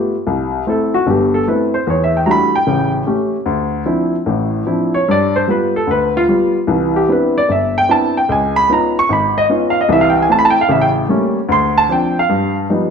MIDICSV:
0, 0, Header, 1, 2, 480
1, 0, Start_track
1, 0, Key_signature, 0, "major"
1, 0, Tempo, 401338
1, 312, Time_signature, 4, 2, 24, 8
1, 15431, End_track
2, 0, Start_track
2, 0, Title_t, "Upright piano"
2, 0, Program_c, 0, 0
2, 0, Note_on_c, 0, 57, 51
2, 0, Note_on_c, 0, 59, 47
2, 0, Note_on_c, 0, 65, 49
2, 0, Note_on_c, 0, 67, 56
2, 168, Note_off_c, 0, 59, 0
2, 168, Note_off_c, 0, 65, 0
2, 169, Note_off_c, 0, 57, 0
2, 170, Note_off_c, 0, 67, 0
2, 320, Note_on_c, 0, 36, 67
2, 733, Note_off_c, 0, 36, 0
2, 800, Note_on_c, 0, 57, 50
2, 801, Note_on_c, 0, 60, 46
2, 814, Note_on_c, 0, 64, 53
2, 833, Note_on_c, 0, 69, 64
2, 1123, Note_off_c, 0, 69, 0
2, 1128, Note_on_c, 0, 66, 83
2, 1132, Note_off_c, 0, 57, 0
2, 1132, Note_off_c, 0, 60, 0
2, 1138, Note_off_c, 0, 64, 0
2, 1273, Note_on_c, 0, 31, 63
2, 1275, Note_on_c, 0, 43, 62
2, 1276, Note_off_c, 0, 66, 0
2, 1312, Note_on_c, 0, 67, 61
2, 1603, Note_off_c, 0, 67, 0
2, 1605, Note_on_c, 0, 69, 77
2, 1689, Note_off_c, 0, 31, 0
2, 1691, Note_off_c, 0, 43, 0
2, 1755, Note_off_c, 0, 69, 0
2, 1762, Note_on_c, 0, 57, 51
2, 1765, Note_on_c, 0, 60, 47
2, 1770, Note_on_c, 0, 64, 55
2, 1777, Note_on_c, 0, 71, 68
2, 2075, Note_off_c, 0, 71, 0
2, 2082, Note_on_c, 0, 72, 76
2, 2093, Note_off_c, 0, 57, 0
2, 2095, Note_off_c, 0, 60, 0
2, 2097, Note_off_c, 0, 64, 0
2, 2233, Note_off_c, 0, 72, 0
2, 2236, Note_on_c, 0, 40, 73
2, 2273, Note_on_c, 0, 73, 75
2, 2409, Note_off_c, 0, 73, 0
2, 2437, Note_on_c, 0, 76, 75
2, 2571, Note_off_c, 0, 76, 0
2, 2593, Note_on_c, 0, 79, 68
2, 2651, Note_off_c, 0, 40, 0
2, 2704, Note_on_c, 0, 82, 67
2, 2705, Note_on_c, 0, 55, 49
2, 2707, Note_on_c, 0, 57, 45
2, 2710, Note_on_c, 0, 62, 49
2, 2713, Note_on_c, 0, 66, 56
2, 2716, Note_on_c, 0, 64, 46
2, 2729, Note_off_c, 0, 79, 0
2, 2736, Note_off_c, 0, 82, 0
2, 2764, Note_on_c, 0, 83, 100
2, 3045, Note_off_c, 0, 55, 0
2, 3046, Note_off_c, 0, 57, 0
2, 3048, Note_off_c, 0, 62, 0
2, 3049, Note_off_c, 0, 66, 0
2, 3049, Note_off_c, 0, 83, 0
2, 3050, Note_off_c, 0, 64, 0
2, 3056, Note_on_c, 0, 79, 88
2, 3189, Note_on_c, 0, 49, 65
2, 3192, Note_on_c, 0, 33, 66
2, 3491, Note_off_c, 0, 79, 0
2, 3608, Note_off_c, 0, 49, 0
2, 3609, Note_off_c, 0, 33, 0
2, 3667, Note_on_c, 0, 61, 48
2, 3668, Note_on_c, 0, 57, 50
2, 3675, Note_on_c, 0, 67, 53
2, 4006, Note_off_c, 0, 57, 0
2, 4006, Note_off_c, 0, 61, 0
2, 4010, Note_off_c, 0, 67, 0
2, 4134, Note_on_c, 0, 38, 70
2, 4560, Note_off_c, 0, 38, 0
2, 4609, Note_on_c, 0, 53, 51
2, 4612, Note_on_c, 0, 60, 52
2, 4616, Note_on_c, 0, 64, 60
2, 4618, Note_on_c, 0, 62, 49
2, 4957, Note_off_c, 0, 53, 0
2, 4959, Note_off_c, 0, 60, 0
2, 4960, Note_off_c, 0, 64, 0
2, 4961, Note_off_c, 0, 62, 0
2, 5094, Note_on_c, 0, 45, 65
2, 5100, Note_on_c, 0, 33, 63
2, 5520, Note_off_c, 0, 45, 0
2, 5523, Note_off_c, 0, 33, 0
2, 5575, Note_on_c, 0, 53, 53
2, 5581, Note_on_c, 0, 60, 49
2, 5582, Note_on_c, 0, 62, 45
2, 5585, Note_on_c, 0, 64, 59
2, 5914, Note_on_c, 0, 73, 89
2, 5920, Note_off_c, 0, 53, 0
2, 5923, Note_off_c, 0, 60, 0
2, 5924, Note_off_c, 0, 62, 0
2, 5925, Note_off_c, 0, 64, 0
2, 6069, Note_off_c, 0, 73, 0
2, 6079, Note_on_c, 0, 43, 78
2, 6113, Note_on_c, 0, 74, 98
2, 6404, Note_off_c, 0, 74, 0
2, 6407, Note_on_c, 0, 72, 86
2, 6493, Note_off_c, 0, 43, 0
2, 6549, Note_on_c, 0, 55, 52
2, 6556, Note_off_c, 0, 72, 0
2, 6559, Note_on_c, 0, 59, 48
2, 6560, Note_on_c, 0, 65, 61
2, 6586, Note_on_c, 0, 71, 77
2, 6880, Note_off_c, 0, 71, 0
2, 6887, Note_off_c, 0, 55, 0
2, 6891, Note_off_c, 0, 59, 0
2, 6892, Note_off_c, 0, 65, 0
2, 6892, Note_on_c, 0, 69, 86
2, 7021, Note_on_c, 0, 38, 63
2, 7038, Note_off_c, 0, 69, 0
2, 7066, Note_on_c, 0, 71, 87
2, 7360, Note_off_c, 0, 71, 0
2, 7378, Note_on_c, 0, 65, 100
2, 7443, Note_off_c, 0, 38, 0
2, 7467, Note_off_c, 0, 65, 0
2, 7518, Note_on_c, 0, 55, 55
2, 7519, Note_on_c, 0, 59, 47
2, 7523, Note_on_c, 0, 65, 58
2, 7851, Note_off_c, 0, 55, 0
2, 7851, Note_off_c, 0, 59, 0
2, 7854, Note_off_c, 0, 65, 0
2, 7982, Note_on_c, 0, 36, 68
2, 7988, Note_on_c, 0, 52, 76
2, 8327, Note_on_c, 0, 67, 78
2, 8404, Note_off_c, 0, 36, 0
2, 8407, Note_off_c, 0, 52, 0
2, 8472, Note_on_c, 0, 59, 53
2, 8476, Note_off_c, 0, 67, 0
2, 8479, Note_on_c, 0, 62, 51
2, 8482, Note_on_c, 0, 60, 45
2, 8489, Note_on_c, 0, 64, 54
2, 8518, Note_on_c, 0, 71, 69
2, 8806, Note_off_c, 0, 71, 0
2, 8808, Note_off_c, 0, 59, 0
2, 8812, Note_off_c, 0, 62, 0
2, 8813, Note_off_c, 0, 60, 0
2, 8817, Note_off_c, 0, 64, 0
2, 8822, Note_on_c, 0, 74, 96
2, 8956, Note_on_c, 0, 31, 61
2, 8963, Note_off_c, 0, 74, 0
2, 8988, Note_on_c, 0, 76, 80
2, 9281, Note_off_c, 0, 76, 0
2, 9302, Note_on_c, 0, 79, 101
2, 9371, Note_off_c, 0, 31, 0
2, 9430, Note_on_c, 0, 59, 51
2, 9433, Note_on_c, 0, 60, 50
2, 9439, Note_on_c, 0, 62, 47
2, 9439, Note_on_c, 0, 64, 59
2, 9443, Note_off_c, 0, 79, 0
2, 9462, Note_on_c, 0, 81, 94
2, 9758, Note_off_c, 0, 81, 0
2, 9767, Note_off_c, 0, 59, 0
2, 9768, Note_off_c, 0, 60, 0
2, 9771, Note_off_c, 0, 62, 0
2, 9772, Note_off_c, 0, 64, 0
2, 9776, Note_on_c, 0, 79, 88
2, 9912, Note_on_c, 0, 37, 72
2, 9920, Note_off_c, 0, 79, 0
2, 9949, Note_on_c, 0, 80, 87
2, 10241, Note_off_c, 0, 80, 0
2, 10241, Note_on_c, 0, 83, 107
2, 10329, Note_off_c, 0, 37, 0
2, 10393, Note_off_c, 0, 83, 0
2, 10397, Note_on_c, 0, 59, 55
2, 10402, Note_on_c, 0, 61, 46
2, 10403, Note_on_c, 0, 65, 56
2, 10405, Note_on_c, 0, 63, 52
2, 10437, Note_on_c, 0, 82, 85
2, 10725, Note_off_c, 0, 82, 0
2, 10731, Note_off_c, 0, 59, 0
2, 10733, Note_off_c, 0, 61, 0
2, 10733, Note_off_c, 0, 65, 0
2, 10735, Note_off_c, 0, 63, 0
2, 10752, Note_on_c, 0, 85, 101
2, 10875, Note_on_c, 0, 32, 67
2, 10888, Note_off_c, 0, 85, 0
2, 10916, Note_on_c, 0, 83, 84
2, 11205, Note_off_c, 0, 83, 0
2, 11214, Note_on_c, 0, 75, 97
2, 11290, Note_off_c, 0, 32, 0
2, 11304, Note_off_c, 0, 75, 0
2, 11356, Note_on_c, 0, 59, 51
2, 11358, Note_on_c, 0, 61, 48
2, 11365, Note_on_c, 0, 63, 52
2, 11368, Note_on_c, 0, 65, 57
2, 11604, Note_on_c, 0, 77, 84
2, 11690, Note_off_c, 0, 59, 0
2, 11691, Note_off_c, 0, 61, 0
2, 11694, Note_off_c, 0, 63, 0
2, 11696, Note_off_c, 0, 65, 0
2, 11715, Note_off_c, 0, 77, 0
2, 11730, Note_on_c, 0, 75, 84
2, 11819, Note_off_c, 0, 75, 0
2, 11826, Note_on_c, 0, 36, 78
2, 11829, Note_on_c, 0, 52, 73
2, 11869, Note_on_c, 0, 76, 87
2, 11972, Note_on_c, 0, 77, 89
2, 12007, Note_off_c, 0, 76, 0
2, 12074, Note_on_c, 0, 79, 81
2, 12137, Note_off_c, 0, 77, 0
2, 12190, Note_off_c, 0, 79, 0
2, 12227, Note_on_c, 0, 80, 85
2, 12245, Note_off_c, 0, 36, 0
2, 12247, Note_off_c, 0, 52, 0
2, 12301, Note_on_c, 0, 57, 54
2, 12308, Note_off_c, 0, 80, 0
2, 12310, Note_on_c, 0, 60, 48
2, 12315, Note_on_c, 0, 64, 62
2, 12340, Note_on_c, 0, 81, 89
2, 12422, Note_on_c, 0, 83, 99
2, 12430, Note_off_c, 0, 81, 0
2, 12472, Note_off_c, 0, 83, 0
2, 12498, Note_on_c, 0, 81, 91
2, 12562, Note_on_c, 0, 79, 101
2, 12641, Note_off_c, 0, 81, 0
2, 12643, Note_off_c, 0, 57, 0
2, 12647, Note_off_c, 0, 60, 0
2, 12650, Note_off_c, 0, 64, 0
2, 12674, Note_off_c, 0, 79, 0
2, 12691, Note_on_c, 0, 77, 90
2, 12780, Note_off_c, 0, 77, 0
2, 12782, Note_on_c, 0, 33, 72
2, 12787, Note_on_c, 0, 49, 69
2, 12811, Note_on_c, 0, 76, 85
2, 12934, Note_on_c, 0, 79, 87
2, 12957, Note_off_c, 0, 76, 0
2, 13036, Note_off_c, 0, 79, 0
2, 13204, Note_off_c, 0, 33, 0
2, 13206, Note_off_c, 0, 49, 0
2, 13264, Note_on_c, 0, 55, 57
2, 13264, Note_on_c, 0, 57, 50
2, 13269, Note_on_c, 0, 58, 50
2, 13273, Note_on_c, 0, 61, 59
2, 13604, Note_off_c, 0, 55, 0
2, 13605, Note_off_c, 0, 57, 0
2, 13607, Note_off_c, 0, 58, 0
2, 13609, Note_off_c, 0, 61, 0
2, 13737, Note_on_c, 0, 38, 77
2, 13778, Note_on_c, 0, 84, 93
2, 14076, Note_off_c, 0, 84, 0
2, 14084, Note_on_c, 0, 81, 98
2, 14161, Note_off_c, 0, 38, 0
2, 14218, Note_on_c, 0, 53, 56
2, 14223, Note_on_c, 0, 60, 56
2, 14226, Note_on_c, 0, 62, 59
2, 14234, Note_off_c, 0, 81, 0
2, 14258, Note_on_c, 0, 79, 82
2, 14557, Note_off_c, 0, 79, 0
2, 14562, Note_off_c, 0, 53, 0
2, 14565, Note_off_c, 0, 60, 0
2, 14566, Note_off_c, 0, 62, 0
2, 14582, Note_on_c, 0, 77, 94
2, 14703, Note_on_c, 0, 43, 68
2, 15016, Note_off_c, 0, 77, 0
2, 15125, Note_off_c, 0, 43, 0
2, 15185, Note_on_c, 0, 53, 52
2, 15187, Note_on_c, 0, 55, 52
2, 15190, Note_on_c, 0, 63, 64
2, 15191, Note_on_c, 0, 59, 53
2, 15431, Note_off_c, 0, 53, 0
2, 15431, Note_off_c, 0, 55, 0
2, 15431, Note_off_c, 0, 59, 0
2, 15431, Note_off_c, 0, 63, 0
2, 15431, End_track
0, 0, End_of_file